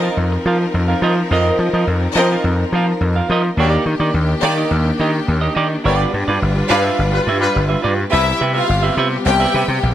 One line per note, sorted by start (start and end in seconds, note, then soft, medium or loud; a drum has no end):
0.00 3.54 F3 medium
0.00 0.12 C4 medium
0.00 3.54 C4 medium
0.00 3.54 D#4 medium
0.00 0.13 A#4 medium
0.00 3.54 A#4 medium
0.00 0.16 A#4 medium
0.00 0.13 D#5 loud
0.00 0.16 F5 medium
0.05 0.17 F4 medium
0.17 0.36 F2 medium
0.32 muted clean electric guitar stroke medium
0.46 0.65 F3 loud
0.46 0.62 F4 medium
0.46 0.60 A#4 medium
0.46 0.60 F5 medium
0.61 muted clean electric guitar stroke soft
0.74 0.93 F2 medium
0.74 muted clean electric guitar stroke medium
0.88 1.01 F4 soft
0.88 1.01 A#4 medium
0.88 1.01 F5 medium
1.02 1.21 F3 loud
1.02 1.19 F4 medium
1.02 1.17 A#4 medium
1.02 1.16 D#5 medium
1.17 muted clean electric guitar stroke medium
1.31 1.50 F2 loud
1.31 1.43 C4 medium
1.31 1.57 F4 medium
1.31 1.43 A#4 medium
1.31 1.57 A#4 medium
1.31 1.43 D#5 medium
1.31 1.58 D#5 medium
1.59 1.68 F3 loud
1.59 muted clean electric guitar stroke soft
1.73 1.83 F3 medium
1.73 1.87 F4 soft
1.73 1.87 A#4 medium
1.73 1.86 D#5 medium
1.87 2.06 F2 loud
1.87 muted clean electric guitar stroke soft
2.03 muted clean electric guitar stroke soft
2.15 2.35 F3 loud
2.15 2.40 C4 loud
2.15 2.32 F4 medium
2.15 2.40 A#4 loud
2.15 2.31 A#4 medium
2.15 2.40 D#5 loud
2.15 2.31 D#5 loud
2.31 2.44 F4 medium
2.31 2.44 A#4 medium
2.31 2.43 F5 medium
2.44 2.63 F2 loud
2.60 muted clean electric guitar stroke soft
2.72 2.92 F3 medium
2.72 2.90 F4 medium
2.72 2.88 A#4 medium
2.72 2.88 F5 medium
2.89 muted clean electric guitar stroke soft
3.01 3.20 F2 medium
3.01 muted clean electric guitar stroke soft
3.16 3.29 F4 soft
3.16 3.29 A#4 soft
3.16 3.28 F5 medium
3.30 3.49 F3 loud
3.30 3.46 F4 medium
3.30 3.45 A#4 medium
3.30 3.44 D#5 loud
3.45 muted clean electric guitar stroke medium
3.57 3.76 D#2 loud
3.57 5.82 D#3 medium
3.57 5.83 A#3 medium
3.57 3.70 A#3 medium
3.57 8.08 D4 medium
3.57 3.69 D4 medium
3.57 3.70 F#4 medium
3.57 5.83 G4 medium
3.57 3.70 G4 medium
3.57 3.71 C#5 loud
3.57 3.70 D5 medium
3.69 3.84 D#4 medium
3.69 3.85 G4 medium
3.69 3.85 D5 loud
3.86 3.95 D#3 medium
3.86 muted clean electric guitar stroke soft
4.00 4.09 D#3 loud
4.00 4.14 D#4 soft
4.00 4.14 G4 medium
4.00 4.13 D5 medium
4.14 4.33 D#2 loud
4.14 muted clean electric guitar stroke soft
4.29 muted clean electric guitar stroke soft
4.42 4.62 D#3 medium
4.42 4.67 A#3 loud
4.42 4.58 D#4 medium
4.42 4.67 G4 medium
4.42 4.57 G4 medium
4.42 4.67 D5 loud
4.42 4.57 D5 medium
4.58 4.71 D#4 soft
4.58 4.70 G4 medium
4.58 4.70 D#5 medium
4.71 4.90 D#2 loud
4.86 muted clean electric guitar stroke soft
5.00 5.19 D#3 loud
5.00 5.16 D#4 medium
5.00 5.14 G4 medium
5.00 5.13 D#5 medium
5.14 muted clean electric guitar stroke soft
5.27 5.47 D#2 loud
5.27 muted clean electric guitar stroke soft
5.41 5.54 D#4 soft
5.41 5.55 G4 medium
5.41 5.55 D#5 medium
5.55 5.75 D#3 loud
5.55 5.72 D#4 medium
5.55 5.70 G4 medium
5.55 5.69 D5 medium
5.70 muted clean electric guitar stroke medium
5.84 6.04 G1 loud
5.84 8.09 G3 medium
5.84 5.97 B3 medium
5.84 5.95 E4 medium
5.84 8.10 F4 medium
5.84 5.97 G4 medium
5.84 5.96 A#4 medium
5.84 8.09 B4 medium
5.84 5.97 C#5 medium
5.84 5.97 D5 medium
5.95 6.11 F4 medium
5.95 6.11 B4 medium
5.95 6.11 D5 medium
6.14 6.23 G2 medium
6.14 muted clean electric guitar stroke soft
6.28 6.37 G2 medium
6.28 6.40 F4 medium
6.28 6.41 B4 medium
6.28 6.40 D5 medium
6.42 6.61 G1 loud
6.42 muted clean electric guitar stroke soft
6.56 muted clean electric guitar stroke soft
6.69 6.89 G2 loud
6.69 6.79 G3 medium
6.69 6.94 D4 loud
6.69 6.84 F4 medium
6.69 6.79 F4 medium
6.69 6.79 B4 medium
6.69 6.94 B4 loud
6.69 6.83 B4 medium
6.69 6.83 D5 loud
6.69 6.94 F5 loud
6.84 6.98 F4 medium
6.84 6.97 B4 medium
6.84 6.97 E5 medium
6.99 7.18 G1 medium
7.12 7.21 G3 medium
7.12 7.22 F4 medium
7.12 7.22 B4 medium
7.12 muted clean electric guitar stroke medium
7.27 7.46 G2 loud
7.27 7.43 F4 medium
7.27 7.40 B4 medium
7.27 7.40 E5 medium
7.41 7.59 G3 medium
7.41 7.59 F4 medium
7.41 7.59 B4 loud
7.41 muted clean electric guitar stroke soft
7.55 7.75 G1 loud
7.55 muted clean electric guitar stroke soft
7.69 7.81 F4 medium
7.69 7.82 B4 medium
7.69 7.82 E5 medium
7.82 8.03 G2 loud
7.82 7.99 F4 medium
7.82 7.96 B4 medium
7.82 7.95 D5 medium
7.96 muted clean electric guitar stroke medium
8.10 8.32 C2 loud
8.10 9.94 C3 medium
8.10 9.94 G3 medium
8.10 9.94 B3 medium
8.10 8.34 E4 loud
8.10 8.28 G4 medium
8.10 9.94 G4 medium
8.10 8.26 B4 medium
8.10 8.34 E5 loud
8.10 8.25 E5 medium
8.26 muted clean electric guitar stroke soft
8.40 8.60 C3 medium
8.40 8.53 G4 medium
8.40 8.53 B4 medium
8.40 8.53 E5 medium
8.54 8.95 F4 loud
8.54 8.67 G4 medium
8.54 8.68 B4 medium
8.54 8.67 E5 medium
8.54 8.95 F5 loud
8.68 8.88 G1 medium
8.68 muted clean electric guitar stroke medium
8.83 8.96 G4 medium
8.83 8.97 B4 medium
8.83 8.98 E5 medium
8.97 9.16 C3 loud
8.97 9.10 G4 medium
8.97 9.10 B4 medium
8.97 9.09 E5 medium
9.11 muted clean electric guitar stroke medium
9.25 9.45 C2 loud
9.25 9.79 G4 loud
9.25 9.79 G5 loud
9.25 muted clean electric guitar stroke soft
9.40 9.53 G4 medium
9.40 9.54 B4 medium
9.40 9.55 E5 medium
9.54 9.64 C3 loud
9.54 9.67 G4 medium
9.54 9.67 B4 medium
9.54 9.67 E5 medium
9.68 9.78 C3 loud
9.68 muted clean electric guitar stroke soft
9.83 9.94 A#1 loud
9.83 muted clean electric guitar stroke soft